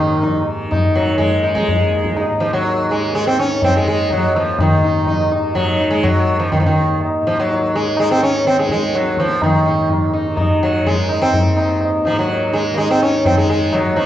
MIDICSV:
0, 0, Header, 1, 4, 480
1, 0, Start_track
1, 0, Tempo, 483871
1, 2156, Time_signature, 5, 2, 24, 8
1, 7907, Tempo, 479233
1, 14005, End_track
2, 0, Start_track
2, 0, Title_t, "Sitar"
2, 0, Program_c, 0, 104
2, 0, Note_on_c, 0, 51, 62
2, 0, Note_on_c, 0, 63, 34
2, 202, Note_off_c, 0, 63, 0
2, 218, Note_on_c, 0, 63, 34
2, 416, Note_off_c, 0, 51, 0
2, 447, Note_off_c, 0, 63, 0
2, 699, Note_on_c, 0, 63, 35
2, 929, Note_off_c, 0, 63, 0
2, 941, Note_on_c, 0, 54, 71
2, 1164, Note_off_c, 0, 54, 0
2, 1167, Note_on_c, 0, 56, 79
2, 1417, Note_on_c, 0, 63, 33
2, 1524, Note_off_c, 0, 56, 0
2, 1535, Note_on_c, 0, 56, 73
2, 1648, Note_off_c, 0, 63, 0
2, 2150, Note_on_c, 0, 63, 31
2, 2227, Note_off_c, 0, 56, 0
2, 2376, Note_off_c, 0, 63, 0
2, 2383, Note_on_c, 0, 53, 68
2, 2501, Note_off_c, 0, 53, 0
2, 2511, Note_on_c, 0, 54, 73
2, 2885, Note_off_c, 0, 54, 0
2, 2885, Note_on_c, 0, 56, 73
2, 3109, Note_off_c, 0, 56, 0
2, 3121, Note_on_c, 0, 56, 84
2, 3231, Note_off_c, 0, 56, 0
2, 3241, Note_on_c, 0, 60, 77
2, 3362, Note_off_c, 0, 60, 0
2, 3366, Note_on_c, 0, 61, 86
2, 3608, Note_off_c, 0, 61, 0
2, 3612, Note_on_c, 0, 60, 88
2, 3717, Note_off_c, 0, 60, 0
2, 3732, Note_on_c, 0, 56, 77
2, 3833, Note_off_c, 0, 56, 0
2, 3845, Note_on_c, 0, 56, 78
2, 4065, Note_off_c, 0, 56, 0
2, 4091, Note_on_c, 0, 54, 80
2, 4323, Note_off_c, 0, 54, 0
2, 4327, Note_on_c, 0, 53, 65
2, 4564, Note_off_c, 0, 53, 0
2, 4568, Note_on_c, 0, 51, 63
2, 4803, Note_on_c, 0, 63, 33
2, 5024, Note_off_c, 0, 63, 0
2, 5037, Note_on_c, 0, 63, 35
2, 5243, Note_off_c, 0, 51, 0
2, 5260, Note_off_c, 0, 63, 0
2, 5271, Note_on_c, 0, 63, 29
2, 5497, Note_off_c, 0, 63, 0
2, 5505, Note_on_c, 0, 54, 81
2, 5754, Note_on_c, 0, 63, 33
2, 5852, Note_off_c, 0, 54, 0
2, 5856, Note_on_c, 0, 56, 85
2, 5978, Note_off_c, 0, 63, 0
2, 5983, Note_on_c, 0, 54, 86
2, 5990, Note_off_c, 0, 56, 0
2, 6338, Note_off_c, 0, 54, 0
2, 6342, Note_on_c, 0, 53, 73
2, 6461, Note_off_c, 0, 53, 0
2, 6465, Note_on_c, 0, 51, 70
2, 6534, Note_off_c, 0, 51, 0
2, 6544, Note_on_c, 0, 53, 56
2, 6604, Note_off_c, 0, 53, 0
2, 6608, Note_on_c, 0, 51, 61
2, 6927, Note_off_c, 0, 51, 0
2, 7209, Note_on_c, 0, 53, 72
2, 7324, Note_off_c, 0, 53, 0
2, 7336, Note_on_c, 0, 54, 70
2, 7692, Note_on_c, 0, 56, 70
2, 7693, Note_off_c, 0, 54, 0
2, 7919, Note_off_c, 0, 56, 0
2, 7931, Note_on_c, 0, 56, 80
2, 8044, Note_off_c, 0, 56, 0
2, 8048, Note_on_c, 0, 60, 83
2, 8161, Note_off_c, 0, 60, 0
2, 8165, Note_on_c, 0, 61, 84
2, 8402, Note_off_c, 0, 61, 0
2, 8406, Note_on_c, 0, 60, 91
2, 8511, Note_off_c, 0, 60, 0
2, 8526, Note_on_c, 0, 56, 71
2, 8632, Note_off_c, 0, 56, 0
2, 8650, Note_on_c, 0, 56, 85
2, 8884, Note_on_c, 0, 54, 77
2, 8889, Note_off_c, 0, 56, 0
2, 9103, Note_off_c, 0, 54, 0
2, 9132, Note_on_c, 0, 53, 74
2, 9367, Note_off_c, 0, 53, 0
2, 9371, Note_on_c, 0, 51, 62
2, 9590, Note_on_c, 0, 63, 31
2, 9816, Note_off_c, 0, 63, 0
2, 10044, Note_off_c, 0, 51, 0
2, 10077, Note_on_c, 0, 63, 32
2, 10300, Note_off_c, 0, 63, 0
2, 10314, Note_on_c, 0, 63, 34
2, 10539, Note_off_c, 0, 63, 0
2, 10570, Note_on_c, 0, 54, 67
2, 10805, Note_on_c, 0, 56, 79
2, 10810, Note_off_c, 0, 54, 0
2, 11035, Note_on_c, 0, 63, 33
2, 11154, Note_off_c, 0, 56, 0
2, 11158, Note_on_c, 0, 60, 79
2, 11259, Note_off_c, 0, 63, 0
2, 11503, Note_on_c, 0, 63, 31
2, 11733, Note_off_c, 0, 63, 0
2, 11837, Note_off_c, 0, 60, 0
2, 11995, Note_on_c, 0, 63, 33
2, 12014, Note_on_c, 0, 53, 72
2, 12128, Note_off_c, 0, 53, 0
2, 12134, Note_on_c, 0, 54, 67
2, 12218, Note_off_c, 0, 63, 0
2, 12238, Note_on_c, 0, 63, 34
2, 12457, Note_off_c, 0, 63, 0
2, 12469, Note_on_c, 0, 63, 31
2, 12479, Note_on_c, 0, 56, 70
2, 12495, Note_off_c, 0, 54, 0
2, 12684, Note_on_c, 0, 58, 59
2, 12693, Note_off_c, 0, 56, 0
2, 12694, Note_off_c, 0, 63, 0
2, 12714, Note_off_c, 0, 58, 0
2, 12716, Note_on_c, 0, 63, 31
2, 12722, Note_on_c, 0, 56, 83
2, 12841, Note_off_c, 0, 56, 0
2, 12850, Note_on_c, 0, 60, 84
2, 12938, Note_off_c, 0, 63, 0
2, 12962, Note_on_c, 0, 63, 34
2, 12965, Note_off_c, 0, 60, 0
2, 12971, Note_on_c, 0, 61, 84
2, 13180, Note_off_c, 0, 63, 0
2, 13193, Note_on_c, 0, 63, 37
2, 13201, Note_off_c, 0, 61, 0
2, 13205, Note_on_c, 0, 60, 85
2, 13310, Note_off_c, 0, 60, 0
2, 13316, Note_on_c, 0, 56, 71
2, 13415, Note_off_c, 0, 63, 0
2, 13426, Note_off_c, 0, 56, 0
2, 13430, Note_on_c, 0, 63, 34
2, 13438, Note_on_c, 0, 56, 80
2, 13653, Note_off_c, 0, 63, 0
2, 13681, Note_off_c, 0, 56, 0
2, 13682, Note_on_c, 0, 54, 77
2, 13908, Note_on_c, 0, 53, 68
2, 13909, Note_on_c, 0, 63, 30
2, 13922, Note_off_c, 0, 54, 0
2, 14005, Note_off_c, 0, 53, 0
2, 14005, Note_off_c, 0, 63, 0
2, 14005, End_track
3, 0, Start_track
3, 0, Title_t, "Tanpura"
3, 0, Program_c, 1, 104
3, 0, Note_on_c, 1, 39, 56
3, 0, Note_on_c, 1, 44, 55
3, 0, Note_on_c, 1, 51, 47
3, 419, Note_off_c, 1, 51, 0
3, 419, Note_on_c, 1, 51, 52
3, 1044, Note_off_c, 1, 51, 0
3, 1044, Note_on_c, 1, 51, 50
3, 1660, Note_off_c, 1, 39, 0
3, 1664, Note_on_c, 1, 39, 57
3, 2268, Note_off_c, 1, 44, 0
3, 2272, Note_on_c, 1, 44, 50
3, 2891, Note_off_c, 1, 51, 0
3, 2891, Note_on_c, 1, 51, 53
3, 3491, Note_off_c, 1, 51, 0
3, 3491, Note_on_c, 1, 51, 52
3, 4110, Note_off_c, 1, 39, 0
3, 4114, Note_on_c, 1, 39, 52
3, 4725, Note_off_c, 1, 44, 0
3, 4729, Note_on_c, 1, 44, 52
3, 5325, Note_off_c, 1, 51, 0
3, 5325, Note_on_c, 1, 51, 47
3, 5941, Note_off_c, 1, 51, 0
3, 5941, Note_on_c, 1, 51, 51
3, 6548, Note_off_c, 1, 39, 0
3, 6552, Note_on_c, 1, 39, 53
3, 7151, Note_off_c, 1, 44, 0
3, 7155, Note_on_c, 1, 44, 50
3, 7766, Note_off_c, 1, 51, 0
3, 7766, Note_on_c, 1, 51, 50
3, 8376, Note_off_c, 1, 51, 0
3, 8376, Note_on_c, 1, 51, 52
3, 8973, Note_off_c, 1, 39, 0
3, 8977, Note_on_c, 1, 39, 53
3, 9602, Note_off_c, 1, 44, 0
3, 9606, Note_on_c, 1, 44, 53
3, 10220, Note_off_c, 1, 51, 0
3, 10220, Note_on_c, 1, 51, 61
3, 10815, Note_off_c, 1, 51, 0
3, 10815, Note_on_c, 1, 51, 54
3, 11427, Note_off_c, 1, 39, 0
3, 11431, Note_on_c, 1, 39, 53
3, 12035, Note_off_c, 1, 44, 0
3, 12039, Note_on_c, 1, 44, 53
3, 12649, Note_off_c, 1, 51, 0
3, 12649, Note_on_c, 1, 51, 58
3, 13247, Note_off_c, 1, 51, 0
3, 13247, Note_on_c, 1, 51, 55
3, 13853, Note_off_c, 1, 39, 0
3, 13857, Note_on_c, 1, 39, 54
3, 14005, Note_off_c, 1, 39, 0
3, 14005, Note_off_c, 1, 44, 0
3, 14005, Note_off_c, 1, 51, 0
3, 14005, End_track
4, 0, Start_track
4, 0, Title_t, "Tabla"
4, 232, Note_on_c, 9, 63, 66
4, 232, Note_on_c, 9, 64, 57
4, 331, Note_off_c, 9, 63, 0
4, 331, Note_off_c, 9, 64, 0
4, 711, Note_on_c, 9, 60, 66
4, 711, Note_on_c, 9, 64, 58
4, 810, Note_off_c, 9, 60, 0
4, 810, Note_off_c, 9, 64, 0
4, 951, Note_on_c, 9, 62, 58
4, 1050, Note_off_c, 9, 62, 0
4, 1189, Note_on_c, 9, 63, 67
4, 1189, Note_on_c, 9, 64, 58
4, 1288, Note_off_c, 9, 63, 0
4, 1288, Note_off_c, 9, 64, 0
4, 1429, Note_on_c, 9, 60, 56
4, 1528, Note_off_c, 9, 60, 0
4, 1551, Note_on_c, 9, 37, 54
4, 1651, Note_off_c, 9, 37, 0
4, 1669, Note_on_c, 9, 63, 68
4, 1669, Note_on_c, 9, 64, 63
4, 1768, Note_off_c, 9, 63, 0
4, 1768, Note_off_c, 9, 64, 0
4, 1912, Note_on_c, 9, 60, 48
4, 2011, Note_off_c, 9, 60, 0
4, 2032, Note_on_c, 9, 37, 54
4, 2131, Note_off_c, 9, 37, 0
4, 2148, Note_on_c, 9, 60, 63
4, 2248, Note_off_c, 9, 60, 0
4, 2624, Note_on_c, 9, 63, 61
4, 2723, Note_off_c, 9, 63, 0
4, 3105, Note_on_c, 9, 62, 64
4, 3205, Note_off_c, 9, 62, 0
4, 3347, Note_on_c, 9, 62, 51
4, 3446, Note_off_c, 9, 62, 0
4, 3590, Note_on_c, 9, 63, 64
4, 3590, Note_on_c, 9, 64, 54
4, 3689, Note_off_c, 9, 63, 0
4, 3689, Note_off_c, 9, 64, 0
4, 4071, Note_on_c, 9, 60, 68
4, 4071, Note_on_c, 9, 64, 63
4, 4171, Note_off_c, 9, 60, 0
4, 4171, Note_off_c, 9, 64, 0
4, 4314, Note_on_c, 9, 62, 50
4, 4414, Note_off_c, 9, 62, 0
4, 4551, Note_on_c, 9, 60, 87
4, 4551, Note_on_c, 9, 64, 73
4, 4651, Note_off_c, 9, 60, 0
4, 4651, Note_off_c, 9, 64, 0
4, 5031, Note_on_c, 9, 63, 67
4, 5031, Note_on_c, 9, 64, 61
4, 5130, Note_off_c, 9, 63, 0
4, 5130, Note_off_c, 9, 64, 0
4, 5278, Note_on_c, 9, 60, 46
4, 5377, Note_off_c, 9, 60, 0
4, 5510, Note_on_c, 9, 60, 69
4, 5510, Note_on_c, 9, 64, 62
4, 5609, Note_off_c, 9, 60, 0
4, 5609, Note_off_c, 9, 64, 0
4, 5988, Note_on_c, 9, 63, 67
4, 5988, Note_on_c, 9, 64, 59
4, 6087, Note_off_c, 9, 63, 0
4, 6087, Note_off_c, 9, 64, 0
4, 6471, Note_on_c, 9, 63, 68
4, 6471, Note_on_c, 9, 64, 61
4, 6570, Note_off_c, 9, 63, 0
4, 6570, Note_off_c, 9, 64, 0
4, 6951, Note_on_c, 9, 60, 65
4, 7050, Note_off_c, 9, 60, 0
4, 7434, Note_on_c, 9, 63, 68
4, 7533, Note_off_c, 9, 63, 0
4, 7905, Note_on_c, 9, 60, 67
4, 8005, Note_off_c, 9, 60, 0
4, 8388, Note_on_c, 9, 62, 64
4, 8488, Note_off_c, 9, 62, 0
4, 8505, Note_on_c, 9, 62, 54
4, 8605, Note_off_c, 9, 62, 0
4, 8626, Note_on_c, 9, 37, 54
4, 8726, Note_off_c, 9, 37, 0
4, 8746, Note_on_c, 9, 62, 52
4, 8847, Note_off_c, 9, 62, 0
4, 8867, Note_on_c, 9, 62, 69
4, 8967, Note_off_c, 9, 62, 0
4, 8986, Note_on_c, 9, 62, 54
4, 9087, Note_off_c, 9, 62, 0
4, 9108, Note_on_c, 9, 37, 49
4, 9208, Note_off_c, 9, 37, 0
4, 9226, Note_on_c, 9, 62, 55
4, 9326, Note_off_c, 9, 62, 0
4, 9354, Note_on_c, 9, 60, 83
4, 9354, Note_on_c, 9, 64, 78
4, 9454, Note_off_c, 9, 60, 0
4, 9454, Note_off_c, 9, 64, 0
4, 9834, Note_on_c, 9, 63, 71
4, 9834, Note_on_c, 9, 64, 61
4, 9935, Note_off_c, 9, 63, 0
4, 9935, Note_off_c, 9, 64, 0
4, 10312, Note_on_c, 9, 60, 70
4, 10312, Note_on_c, 9, 64, 59
4, 10413, Note_off_c, 9, 60, 0
4, 10413, Note_off_c, 9, 64, 0
4, 10794, Note_on_c, 9, 63, 65
4, 10794, Note_on_c, 9, 64, 60
4, 10894, Note_off_c, 9, 63, 0
4, 10894, Note_off_c, 9, 64, 0
4, 11032, Note_on_c, 9, 60, 53
4, 11132, Note_off_c, 9, 60, 0
4, 11276, Note_on_c, 9, 63, 71
4, 11276, Note_on_c, 9, 64, 63
4, 11377, Note_off_c, 9, 63, 0
4, 11377, Note_off_c, 9, 64, 0
4, 11522, Note_on_c, 9, 60, 52
4, 11622, Note_off_c, 9, 60, 0
4, 11756, Note_on_c, 9, 60, 69
4, 11856, Note_off_c, 9, 60, 0
4, 12002, Note_on_c, 9, 60, 52
4, 12102, Note_off_c, 9, 60, 0
4, 12235, Note_on_c, 9, 63, 65
4, 12335, Note_off_c, 9, 63, 0
4, 12712, Note_on_c, 9, 60, 67
4, 12812, Note_off_c, 9, 60, 0
4, 13195, Note_on_c, 9, 63, 67
4, 13195, Note_on_c, 9, 64, 58
4, 13295, Note_off_c, 9, 63, 0
4, 13295, Note_off_c, 9, 64, 0
4, 13672, Note_on_c, 9, 60, 67
4, 13672, Note_on_c, 9, 64, 60
4, 13772, Note_off_c, 9, 60, 0
4, 13772, Note_off_c, 9, 64, 0
4, 13911, Note_on_c, 9, 62, 48
4, 14005, Note_off_c, 9, 62, 0
4, 14005, End_track
0, 0, End_of_file